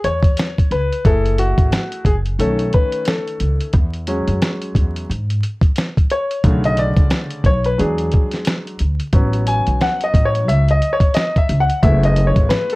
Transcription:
0.04 E2 C#5, closed hi-hat
0.22 kick, closed hi-hat
0.37 snare, closed hi-hat
0.58 kick, closed hi-hat
0.71 C#2 B4, closed hi-hat
0.92 closed hi-hat
1.05 F#1 A3 E4 G#4 A4, kick, closed hi-hat
1.25 closed hi-hat
1.38 F#4, closed hi-hat
1.58 G#1, kick, closed hi-hat
1.72 snare, closed hi-hat
1.92 closed hi-hat
2.05 F#1 G#4, kick, closed hi-hat
2.26 closed hi-hat
2.39 B1 D#3 A3 C#4 A4, closed hi-hat
2.59 closed hi-hat
2.73 B4, kick, closed hi-hat
2.92 closed hi-hat
3.05 A4, snare, closed hi-hat
3.28 closed hi-hat
3.40 C#2, closed hi-hat
3.61 closed hi-hat
3.73 E2, kick, closed hi-hat
3.94 closed hi-hat
4.07 F#3 G#3 C#4, closed hi-hat
4.28 F#2, closed hi-hat
4.42 snare, closed hi-hat
4.62 closed hi-hat
4.75 E2, kick, closed hi-hat
4.96 closed hi-hat
5.10 G#2, closed hi-hat
5.30 closed hi-hat
5.43 closed hi-hat
5.61 kick, closed hi-hat
5.76 snare, closed hi-hat
5.97 kick, closed hi-hat
6.10 C#5, closed hi-hat
6.31 closed hi-hat
6.44 B1 C#3 D3 A3, kick, closed hi-hat
6.64 D#5, closed hi-hat
6.77 D5, closed hi-hat
6.97 C#2, kick, closed hi-hat
7.10 snare, closed hi-hat
7.31 closed hi-hat
7.44 B1 C#5, kick, closed hi-hat
7.64 B4, closed hi-hat
7.78 E2 F#3 G#3 D4 G#4, closed hi-hat
7.98 closed hi-hat
8.11 kick, closed hi-hat
8.31 snare, closed hi-hat
8.45 snare, closed hi-hat
8.67 closed hi-hat
8.79 D2, closed hi-hat
9.00 closed hi-hat
9.13 A1 F#3 B3 C#4, kick, closed hi-hat
9.33 closed hi-hat
9.47 G#5, closed hi-hat
9.67 B1, closed hi-hat
9.81 F#5, snare, closed hi-hat
10.01 D#5, closed hi-hat
10.14 A1, kick, closed hi-hat
10.25 C#5
10.35 closed hi-hat
10.48 C#2 E5, closed hi-hat
10.68 D#5, closed hi-hat
10.82 closed hi-hat
10.93 C#5
11.00 kick, closed hi-hat
11.14 D#5, snare, closed hi-hat
11.36 E5, kick, closed hi-hat
11.49 C#2, closed hi-hat
11.60 F#5
11.70 closed hi-hat
11.83 F#1 G#3 A3 B3 E4 E5, kick, closed hi-hat
12.03 D#5, closed hi-hat
12.16 closed hi-hat
12.27 C#5
12.36 G#1, kick, closed hi-hat
12.49 B4, snare, closed hi-hat
12.70 A4, closed hi-hat

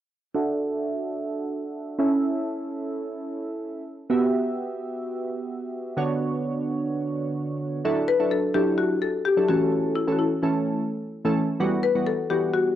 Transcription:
0.35 D4 F#4 A4 E5
1.98 C#4 E4 A4 E5
4.10 B3 F#4 G4 E5
5.97 D3 B3 D4 F#4 C#5
7.85 F#3 D4 E4 A4
8.08 B4
8.19 F#3 D4 E4 A4
8.31 A4
8.54 F#3 D4 E4 G4 A4
8.78 F#4
9.02 A4
9.25 G4
9.37 F#3 D4 E4 A4
9.48 E3 A3 C#4 F#4 A4
9.95 E4
10.07 E3 A3 C#4 A4
10.12 F#4
10.19 E4
10.42 E3 A3 C#4 A4
11.25 E3 A3 C#4 A4
11.60 E3 G3 B3 F#4
11.83 B4
11.95 E3 G3 B3 F#4
12.06 A4
12.30 E3 G3 B3 F#4 G4
12.54 F#4

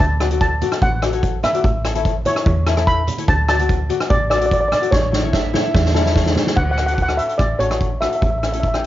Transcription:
0.00 D2 A5, closed hi-hat
0.20 F#4 A4 D5, cross-stick, closed hi-hat
0.31 F#4 A4 D5, closed hi-hat, high conga
0.41 A5, kick, closed hi-hat
0.62 F#4 A4 D5, closed hi-hat, high conga, low conga
0.72 cross-stick, closed hi-hat
0.82 A1 F#5, kick, closed hi-hat, low conga
0.92 high conga
1.02 F#4 A4 D5, cross-stick, closed hi-hat
1.13 F#4 A4 C#5, closed hi-hat
1.23 kick, closed hi-hat
1.43 E5, cross-stick, closed hi-hat, low conga
1.53 F#4 A4 D5, closed hi-hat, high conga
1.64 A1, kick, closed hi-hat
1.84 E4 A4 C#5, cross-stick, closed hi-hat
1.95 E4 A4 C#5, closed hi-hat, high conga
2.05 kick, closed hi-hat
2.25 E4 A4 C#5, closed hi-hat, high conga, low conga
2.36 cross-stick, closed hi-hat
2.46 E2, kick, closed hi-hat, low conga
2.56 high conga
2.66 E4 A4 C#5, cross-stick, closed hi-hat
2.77 E4 A4 C#5, cross-stick, closed hi-hat
2.87 B5, kick, closed hi-hat
3.07 closed hi-hat, low conga
3.18 E4 A4 C#5, closed hi-hat, high conga
3.28 D2 A5, kick, closed hi-hat
3.49 F#4 A4 D5 A5, cross-stick, closed hi-hat
3.59 F#4 A4 D5, closed hi-hat, high conga
3.69 kick, closed hi-hat
3.89 F#4 A4 D5, closed hi-hat, high conga
4.00 cross-stick, closed hi-hat
4.10 A1 D5, kick, closed hi-hat, low conga
4.20 high conga
4.30 F#4 A4 D5, cross-stick, closed hi-hat
4.38 F#4 A4 D5, closed hi-hat
4.46 D5
4.51 D5, kick, closed hi-hat
4.60 D5
4.68 D5, cross-stick, closed hi-hat, low conga
4.75 D5
4.82 F#4 A4 D5, closed hi-hat
4.91 A1 C#5, kick, snare
5.03 high conga
5.12 E4 A4 C#5, snare
5.23 E4 A4 C#5, high conga
5.33 E5, kick, snare
5.53 E4 A4 C#5 E5, snare, low conga
5.74 E2, kick, snare, low conga
5.85 snare, high conga
5.94 E4 A4 C#5, snare, low conga
6.05 E4 A4 C#5, snare
6.16 C#5, kick, snare
6.26 snare
6.36 snare, low conga
6.46 E4 A4 C#5, snare, high conga
6.57 D2 F#5, kick, crash
6.64 F#5
6.71 F#5
6.77 D4 F#4 A4 F#5, cross-stick, closed hi-hat
6.86 D4 F#4 A4 F#5, closed hi-hat
6.94 F#5, kick, closed hi-hat
7.02 F#5
7.08 D4 F#4 A4, cross-stick
7.17 E5, closed hi-hat
7.29 closed hi-hat
7.38 A1 D5, kick, cross-stick, closed hi-hat
7.59 A1 D4 F#4 A4 C#5, closed hi-hat
7.70 D4 F#4 A4, cross-stick, closed hi-hat
7.81 kick, closed hi-hat
8.01 D4 F#4 A4 E5, cross-stick, closed hi-hat
8.09 E5, closed hi-hat
8.16 E5
8.22 A1, kick, closed hi-hat
8.31 E5
8.38 E5
8.43 C#4 E4 A4 E5, cross-stick, closed hi-hat
8.53 C#4 E4 A4 E5, closed hi-hat
8.60 E5, kick, closed hi-hat
8.68 E5
8.74 C#4 E4 G4, cross-stick

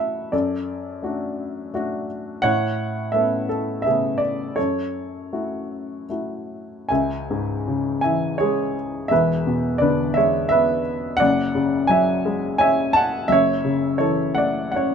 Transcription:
Already playing: F#2 A3 E4 F#4 E5 F#5 A5 B5
0.32 F#2 A4 D5
1.02 A3 D4 F#4
1.74 A3 D4 F#4
2.42 A2 C#5 F#5
3.12 A3 B3 C#4 A4 E5
3.49 A4
3.82 E5
3.86 C#3 A3 B3 G#4
4.18 D5
4.56 F#2 A4 C#5
5.33 A3 E4 F#4
6.10 A3 E4 F#4
6.89 C#2 E5 G#5
7.31 G#2
7.68 C#3
8.01 E3 E5 G#5
8.38 G#4 C#5
8.42 G#3
9.08 E1 E2 B4 E5
9.47 B2
9.78 D3 B4 D5
10.14 G#3 C#5 E5
10.49 B3 B4 E5
11.17 D5 F#5
11.21 F#1 F#2
11.55 C#3
11.87 F#3 E5 G#5
12.26 G#3
12.58 C#4 E5 G#5
12.93 F#5 A5
13.28 F#1 F#2 E5
13.32 C#5
13.65 C#3
13.98 E3 A4 C#5
14.35 A3 D5 F#5
14.72 C#4 F#5
14.76 C#5

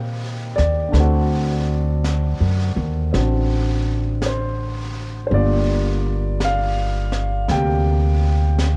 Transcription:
Already playing: A#2 D#3 A#3 C4 D#4 G4 G5
0.56 D#2 D5, snare
0.88 D3 A3
0.93 D2 C4, brush sweep, snare
1.00 F#4
2.04 brush sweep, snare, hi-hat pedal
2.40 F#2
2.76 D#2
3.13 A1 C4 D4 F#4, brush sweep, snare
4.22 brush sweep, snare, hi-hat pedal
4.26 C5
5.27 D3 C5, brush sweep
5.31 G1 G3 A#3 F4 D5
6.40 brush sweep, snare, hi-hat pedal
6.45 F5
7.12 snare
7.48 D2 C3 A#3 G4 G5, brush sweep, snare
8.59 brush sweep, snare, hi-hat pedal

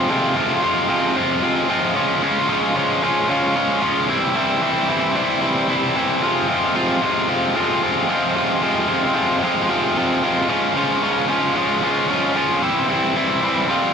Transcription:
Already playing: F4
0.09 F2 C3 F3 G#3 C4 F4
0.35 F2 C3 F3 G#3 C4 F4
0.62 F2 C3 F3 G#3 C4 F4
0.89 F2 C3 F3 G#3 C4 F4
1.15 F2 C3 F3 G#3 C4 F4
1.42 F2 C3 F3 G#3 C4 F4
1.68 F2 C3 F3 G#3 C4 F4
1.95 C#3 F3 G#3 C#4 F4
2.22 C#3 F3 G#3 C#4 F4
2.49 C#3 F3 G#3 C#4 F4
2.75 C#3 F3 G#3 C#4 F4
3.02 C#3 F3 G#3 C#4 F4
3.29 C#3 F3 G#3 C#4 F4
3.55 C#3 F3 G#3 C#4 F4
3.82 C#3 F3 G#3 C#4 F4
4.08 C3 E3 G3 C4 E4
4.35 C3 E3 G3 C4 E4
4.61 C3 E3 G3 C4 E4
4.88 C3 E3 G3 C4 E4
5.15 C3 E3 G3 C4 E4
5.42 C3 E3 G3 C4 E4
5.69 C3 E3 G3 C4 E4
5.95 C3 E3 G3 C4 E4
6.22 F2 C3 F3 G#3 C4 F4
6.48 F2 C3 F3 G#3 C4 F4
6.75 F2 C3 F3 G#3 C4 F4
7.01 F2 C3 F3 G#3 C4 F4
7.29 F2 C3 F3 G#3 C4 F4
7.55 F2 C3 F3 G#3 C4 F4
7.82 F2 C3 F3 G#3 C4 F4
8.08 F2 C3 F3 G#3 C4 F4
8.35 F2 C3 F3 G#3 C4 F4
8.62 F2 C3 F3 G#3 C4 F4
8.88 F2 C3 F3 G#3 C4 F4
9.15 F2 C3 F3 G#3 C4 F4
9.42 F2 C3 F3 G#3 C4 F4
9.69 F2 C3 F3 G#3 C4 F4
9.96 F2 C3 F3 G#3 C4 F4
10.23 F2 C3 F3 G#3 C4 F4
10.49 C#3 F3 G#3 C#4 F4
10.76 C#3 F3 G#3 C#4 F4
11.03 C#3 F3 G#3 C#4 F4
11.29 C#3 F3 G#3 C#4 F4
11.56 C#3 F3 G#3 C#4 F4
11.83 C#3 F3 G#3 C#4 F4
12.09 C#3 F3 G#3 C#4 F4
12.36 C#3 F3 G#3 C#4 F4
12.62 C3 E3 G3 C4 E4
12.89 C3 E3 G3 C4 E4
13.15 C3 E3 G3 C4 E4
13.42 C3 E3 G3 C4 E4
13.69 F3 G3 C4 F4

